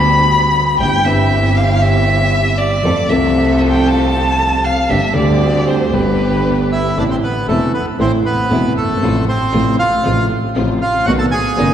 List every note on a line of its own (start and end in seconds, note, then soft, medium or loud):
0.00 0.71 D2 loud
0.00 0.71 D2 medium
0.00 0.71 D3 medium
0.00 0.70 G3 medium
0.00 0.71 B3 medium
0.00 0.71 D4 medium
0.00 0.71 G4 medium
0.00 0.72 G4 medium
0.00 0.80 B5 loud
0.79 1.01 G1 medium
0.79 1.01 G1 soft
0.79 1.01 G2 medium
0.79 1.01 E3 soft
0.79 1.01 G3 soft
0.79 1.01 C4 soft
0.79 1.01 E4 soft
0.79 1.01 G4 soft
0.79 1.02 G4 medium
0.79 1.06 G5 loud
1.04 2.75 G1 loud
1.04 2.76 G1 medium
1.04 2.76 G2 medium
1.04 2.75 E3 medium
1.04 2.75 G3 medium
1.04 2.76 C4 medium
1.04 2.76 E4 medium
1.04 2.76 G4 medium
1.04 2.77 G4 medium
1.04 1.58 E5 medium
1.57 1.83 F5 medium
1.82 2.59 E5 medium
2.58 3.11 D5 medium
2.83 3.06 F2 medium
2.83 3.06 F3 soft
2.83 3.06 A3 soft
2.83 3.06 C4 soft
2.83 3.06 F4 soft
2.83 3.06 A4 medium
2.83 3.06 A4 soft
3.08 4.80 C2 loud
3.08 4.81 C2 medium
3.08 4.81 C3 medium
3.08 4.80 F3 medium
3.08 4.81 A3 medium
3.08 4.81 C4 medium
3.08 4.81 F4 medium
3.08 4.81 A4 loud
3.08 3.61 E5 medium
3.12 4.82 A4 medium
3.70 3.89 G5 medium
3.87 4.66 A5 medium
4.64 4.91 F5 medium
4.89 5.11 G1 medium
4.89 5.11 G2 medium
4.89 5.11 D3 soft
4.89 5.11 G3 soft
4.89 5.11 C4 soft
4.89 5.11 D4 soft
4.89 5.11 G4 medium
4.89 5.16 E5 medium
5.14 5.89 D2 loud
5.14 5.89 D2 medium
5.14 5.89 D3 medium
5.14 5.89 G3 medium
5.14 5.89 C4 medium
5.14 5.89 D4 medium
5.14 5.89 G4 medium
5.14 5.90 G4 medium
5.14 5.69 D5 medium
5.67 5.95 C5 medium
5.91 6.91 G1 medium
5.91 6.92 G1 medium
5.91 6.92 G2 medium
5.91 6.91 D3 medium
5.91 6.91 G3 medium
5.91 6.91 B3 medium
5.91 6.92 B3 medium
5.91 6.91 D4 medium
5.91 6.92 G4 medium
5.91 6.71 B4 medium
6.72 6.96 E4 medium
6.72 6.98 E5 medium
6.96 7.18 A1 medium
6.96 7.18 A2 medium
6.96 7.18 C3 medium
6.96 7.19 E3 medium
6.96 7.18 A3 medium
6.96 7.18 C4 medium
6.96 7.04 D4 medium
6.96 7.18 E4 medium
6.96 7.19 E4 medium
6.96 7.03 D5 medium
7.11 7.16 C4 medium
7.11 7.16 C5 medium
7.23 7.47 B3 medium
7.23 7.47 B4 medium
7.47 7.69 E1 medium
7.47 7.70 E1 medium
7.47 7.70 E2 medium
7.47 7.70 C3 medium
7.47 7.70 E3 medium
7.47 7.69 A3 medium
7.47 7.70 A3 medium
7.47 7.72 A3 medium
7.47 7.70 C4 medium
7.47 7.70 E4 medium
7.47 7.72 A4 medium
7.74 7.86 B3 medium
7.74 7.85 B4 medium
7.98 8.21 A1 medium
7.98 8.21 A2 medium
7.98 8.20 C3 medium
7.98 8.20 E3 medium
7.98 8.21 A3 medium
7.98 8.21 C4 medium
7.98 8.12 C4 medium
7.98 8.21 E4 medium
7.98 8.12 C5 medium
8.26 8.73 B3 medium
8.26 8.73 B4 medium
8.50 8.72 E1 medium
8.50 8.72 E2 medium
8.50 8.72 C3 medium
8.50 8.72 E3 medium
8.50 8.72 A3 medium
8.50 8.72 C4 medium
8.50 8.72 E4 medium
8.50 8.73 E4 medium
8.76 9.00 G1 soft
8.76 9.25 A3 medium
8.76 9.25 A4 medium
8.83 8.89 F#1 soft
8.90 8.96 G1 medium
8.96 9.02 G#1 medium
9.01 9.23 A1 medium
9.01 9.24 A1 medium
9.01 9.24 A2 medium
9.01 9.24 C3 medium
9.01 9.24 F3 medium
9.01 9.24 A3 medium
9.01 9.24 C4 medium
9.01 9.24 F4 medium
9.28 9.76 C4 medium
9.28 9.76 C5 medium
9.52 9.74 A1 medium
9.52 9.75 A1 medium
9.52 9.75 A2 medium
9.52 9.75 C3 medium
9.52 9.75 F3 medium
9.52 9.74 A3 medium
9.52 9.75 A3 medium
9.52 9.74 C4 medium
9.52 9.75 F4 medium
9.79 10.27 F4 medium
9.79 10.27 F5 medium
10.04 10.26 A1 medium
10.04 10.27 A2 medium
10.04 10.26 C3 medium
10.04 10.27 F3 medium
10.04 10.26 A3 medium
10.04 10.27 A3 medium
10.04 10.26 C4 medium
10.04 10.26 F4 medium
10.04 10.27 F4 medium
10.55 10.77 A1 medium
10.55 10.77 A2 medium
10.55 10.77 C3 medium
10.55 10.77 F3 medium
10.55 10.77 A3 medium
10.55 10.77 C4 medium
10.55 10.77 F4 medium
10.55 10.78 F4 medium
10.82 11.06 F4 medium
10.82 11.05 F5 medium
11.05 11.28 B1 medium
11.05 11.29 B1 medium
11.05 11.29 B2 medium
11.05 11.29 D#3 medium
11.05 11.28 A3 medium
11.05 11.29 A3 medium
11.05 11.28 B3 medium
11.05 11.29 B3 medium
11.05 11.28 D#4 medium
11.05 11.13 F#4 medium
11.05 11.29 F#4 medium
11.05 11.11 F#5 loud
11.19 11.26 A4 medium
11.19 11.25 A5 medium
11.31 11.74 G#4 medium
11.31 11.74 G#5 loud
11.57 11.74 F#1 medium
11.57 11.74 F#2 medium
11.57 11.74 D#3 medium
11.57 11.74 A3 medium
11.57 11.74 B3 medium
11.57 11.74 D#4 medium
11.57 11.74 F#4 medium